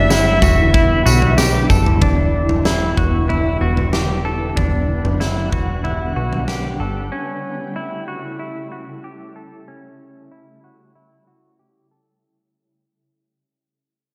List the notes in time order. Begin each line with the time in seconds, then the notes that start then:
Already playing: F#1 D3 G3 B3 D4 E4 E5
0.10 E4, snare, tambourine
0.42 E1 F#4, kick, floor tom, tambourine
0.74 E4, kick
1.06 B1 F#4, tambourine
1.22 floor tom
1.38 G4, snare, tambourine
1.70 F#1 A4, kick, tambourine
1.86 floor tom
2.01 E1 D3 G3 B3 D4 E4, kick, floor tom
2.49 floor tom
2.65 E4, snare
2.97 E1 F#4, kick, floor tom
3.29 E4, floor tom
3.61 E1 F#4
3.77 floor tom
3.93 G4, snare
4.25 A4
4.56 E1 D4 F#5, kick, floor tom
5.05 F#1, floor tom
5.20 E4, snare
5.52 E1 F#4, kick, floor tom
5.84 E4, floor tom
6.16 B1 F#4
6.33 floor tom
6.48 G4, snare
6.80 G1 A4
7.12 C#3 A3 C#4 E4
7.76 E4
8.08 F#4
8.39 E4
8.72 F#4
9.04 G4
9.36 A4
9.68 C#4
10.32 E4
10.64 F#4
10.95 E4
11.27 F#4
11.59 G4
11.91 A4